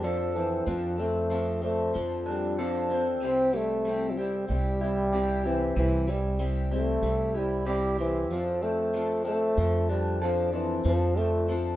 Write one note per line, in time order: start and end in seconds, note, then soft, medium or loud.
0.00 0.63 F2 medium
0.00 0.66 F3 medium
0.00 0.35 F3 medium
0.00 0.36 C4 medium
0.00 0.35 C4 medium
0.00 1.31 D4 medium
0.04 0.38 F3 medium
0.04 0.36 D4 medium
0.04 0.34 A4 medium
0.35 0.70 E3 medium
0.35 0.65 C4 soft
0.35 0.66 D4 soft
0.35 0.67 A4 soft
0.66 1.90 F2 medium
0.66 0.98 F3 medium
0.66 1.02 F3 medium
0.66 0.99 C4 medium
0.66 0.98 D4 medium
0.66 0.96 A4 medium
0.98 1.63 A3 medium
0.98 1.29 C4 soft
0.98 1.30 D4 soft
0.98 1.30 A4 soft
1.30 1.62 F3 medium
1.30 1.62 C4 medium
1.30 1.62 D4 medium
1.30 1.60 A4 medium
1.61 1.97 A3 medium
1.61 1.93 C4 soft
1.61 1.94 D4 soft
1.61 1.94 A4 soft
1.93 3.22 F2 medium
1.93 2.25 F3 soft
1.93 2.26 C4 soft
1.93 2.27 D4 medium
1.93 2.25 A4 medium
2.26 2.62 G3 medium
2.26 2.58 C4 soft
2.26 2.58 D4 soft
2.26 2.58 A4 soft
2.58 2.90 F3 medium
2.58 3.07 F3 medium
2.58 2.90 C4 medium
2.58 2.90 D4 medium
2.58 2.89 A4 medium
2.90 3.22 C4 soft
2.90 3.22 D4 soft
2.90 3.22 A4 soft
3.22 4.45 C2 medium
3.22 3.54 C3 medium
3.22 3.54 G3 medium
3.22 3.54 C4 medium
3.22 3.58 C4 medium
3.22 3.54 E4 medium
3.22 3.53 G4 medium
3.53 3.84 G3 medium
3.53 4.12 A3 medium
3.53 3.86 E4 soft
3.53 3.85 G4 soft
3.58 3.87 C4 soft
3.86 4.18 C3 medium
3.86 4.18 G3 medium
3.86 4.19 C4 medium
3.86 4.18 E4 medium
3.86 4.17 G4 medium
4.11 4.19 F3 medium
4.17 4.48 G3 medium
4.17 5.45 C4 medium
4.17 4.50 E4 soft
4.17 4.49 G4 soft
4.21 4.50 C4 soft
4.49 5.73 C2 medium
4.49 5.47 G3 medium
4.49 4.81 G3 medium
4.49 4.82 C4 medium
4.49 4.82 E4 medium
4.49 4.79 G4 medium
4.81 5.12 C4 soft
4.81 5.13 E4 soft
4.81 5.12 G4 medium
5.12 5.44 C3 medium
5.12 5.45 G3 medium
5.12 5.45 C4 medium
5.12 5.44 E4 medium
5.12 5.42 G4 medium
5.44 5.77 E3 medium
5.44 5.76 C4 soft
5.44 5.77 E4 soft
5.44 5.76 G4 soft
5.76 7.00 C2 medium
5.76 6.08 C3 medium
5.76 6.11 E3 medium
5.76 6.08 G3 medium
5.76 6.09 C4 medium
5.76 6.08 E4 medium
5.76 6.05 G4 medium
6.07 6.38 G3 medium
6.07 6.45 G3 medium
6.07 6.38 C4 soft
6.07 6.39 E4 soft
6.07 6.39 G4 soft
6.39 6.71 C3 medium
6.39 6.71 G3 medium
6.39 6.71 C4 medium
6.39 6.71 E4 medium
6.39 6.70 G4 medium
6.71 7.39 A3 medium
6.71 7.04 C4 soft
6.71 7.04 E4 soft
6.71 7.03 G4 soft
7.02 8.30 C2 medium
7.02 7.35 G3 medium
7.02 7.36 C4 medium
7.02 7.35 E4 medium
7.02 7.34 G4 medium
7.35 7.67 G3 medium
7.35 7.66 C4 soft
7.35 7.66 E4 soft
7.35 7.67 G4 soft
7.65 7.98 C3 medium
7.65 7.98 G3 medium
7.65 7.97 G3 medium
7.65 7.99 C4 medium
7.65 7.99 E4 medium
7.65 7.97 G4 medium
7.98 8.32 E3 medium
7.98 8.32 C4 soft
7.98 8.31 E4 soft
7.98 8.30 G4 soft
8.30 9.53 F2 medium
8.30 8.64 F3 medium
8.30 8.63 F3 medium
8.30 8.64 C4 medium
8.30 8.63 D4 medium
8.34 8.61 A4 medium
8.62 9.25 A3 medium
8.62 8.94 C4 soft
8.62 8.95 D4 soft
8.62 8.94 A4 soft
8.94 9.26 F3 medium
8.94 9.26 C4 medium
8.94 9.26 D4 medium
8.94 9.24 A4 medium
9.25 9.92 A3 medium
9.25 9.56 C4 soft
9.25 9.58 D4 soft
9.25 9.57 A4 soft
9.57 10.81 F2 medium
9.57 9.89 F3 soft
9.57 9.89 C4 medium
9.57 9.89 D4 soft
9.57 9.88 A4 medium
9.89 10.22 G3 medium
9.89 10.22 C4 soft
9.89 10.22 D4 soft
9.89 10.21 A4 soft
10.22 10.53 F3 medium
10.22 10.51 F3 medium
10.22 10.54 C4 medium
10.22 10.54 D4 medium
10.22 10.52 A4 medium
10.53 10.86 E3 medium
10.53 10.85 C4 soft
10.53 10.86 D4 soft
10.53 10.85 A4 soft
10.84 11.76 F2 medium
10.84 11.19 F3 medium
10.84 11.17 F3 medium
10.84 11.17 C4 medium
10.84 11.17 D4 medium
10.84 11.16 A4 medium
11.17 11.53 A3 medium
11.17 11.48 C4 soft
11.17 11.49 D4 soft
11.17 11.49 A4 soft
11.49 11.76 F3 medium
11.49 11.76 C4 medium
11.49 11.76 D4 medium
11.49 11.76 A4 medium